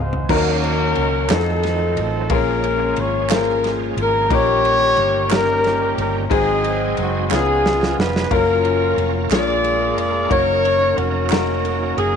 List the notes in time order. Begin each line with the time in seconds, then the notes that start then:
Already playing: C#2 G#2 G#3 B3 C4 D#4 F#4 G#4 C5 D#5 F5 G#5
0.00 C5
0.13 floor tom
0.29 D#2 D#3 F#3 A#3 C#4 D#4 F#4 A#4, kick, crash
0.33 C#4 F#4 A#4
0.64 ride
0.95 C#2, ride
1.29 F2 D#3 F3 F#3 G#3 C4 D#4 F4 F#4 A4, snare, clap, ride
1.34 A3 A4
1.63 snare, ride
1.97 A1, ride
2.01 A4
2.30 A#1 A#2 F3 G#3 A#3 C4 C#4 F4 G#4 A#4, kick, ride
2.34 C#4 A#4
2.64 ride
2.96 G#1 C#5, ride
3.29 A#3 C#4 F4 G#4 C5, snare, clap, ride
3.34 A#4
3.64 snare, ride
3.97 G#1, ride
4.01 A#4
4.28 A#1 A#2 D#3 G3 A#3 C#4 D#4 G4 A#4, kick, ride
4.34 G4 C#5
4.65 ride
4.97 G1, ride
5.30 A#3 C#4 D#4 G4 A#4, snare, clap, ride
5.64 snare, ride
5.98 G1 A#4, ride
6.30 G#1 G#2 F#3 G#3 C4 D#4 F#4 G#4, kick, ride
6.64 ride
6.97 F#1 F#4, ride
7.30 C#2 C#3 F3 B3 C#4 D#4 F4 G#4, snare, clap
7.66 snare
7.83 snare
7.99 F1 B4, snare
8.16 snare
8.30 F#1 F#3 A#3 C#4 F4 A#4, kick, ride
8.34 C#4 F4 A#4
8.65 ride
8.97 F1, ride
9.30 A#1 A#2 G#3 A#3 D4 F4 G#4 A#4 D5, snare, clap, ride
9.64 ride
9.97 F1 D5, ride
10.29 F#1 F#3 A#3 C#4 D#4 F#4 G#4 A#4 C#5, kick, ride
10.38 A#4
10.65 ride
10.97 F1 A#3 C#4 F#4, ride
11.30 A#3 C#4 D#4 F#4 A#4, snare, clap, ride
11.65 ride
11.97 F#1 G#4, ride